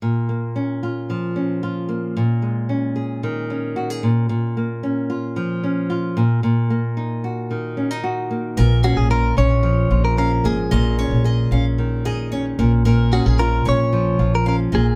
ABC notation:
X:1
M:4/4
L:1/16
Q:1/4=112
K:Bbm
V:1 name="Steel-string acoustic guitar"
z16 | z16 | z16 | z16 |
B2 A2 B2 d z4 z f z e z | e2 d2 e2 f z3 e2 d z B z | B2 A2 B2 d z4 z f z e z |]
V:2 name="Clean electric guitar"
z16 | z16 | z16 | z16 |
z2 G A B2 d4- d B B2 A2- | A4 z12 | z2 G A B2 d4- d B B2 A2 |]
V:3 name="Nylon-string guitar"
B,,2 B,2 D2 F2 F,2 D2 F2 B,2 | B,,2 A,2 D2 A2 E,2 D2 G A B,,2 | B,,2 B,2 D2 F2 F,2 D2 F2 B,,2 | B,,2 B,2 E2 G2 E,2 D E G2 B,2 |
B,,2 D2 F2 D2 F,2 F2 D2 B,2 | B,,2 D2 A2 D2 E,2 A2 D2 B,,2 | B,,2 D2 F2 D2 F,2 F2 D2 B,,2 |]
V:4 name="Upright bass" clef=bass
z16 | z16 | z16 | z16 |
B,,,3 B,,,3 B,,,4 B,,,4 A,,,2 | B,,,3 B,,,3 B,,,8 B,,,2- | B,,,3 B,,,3 B,,,4 B,,,4 B,,,2 |]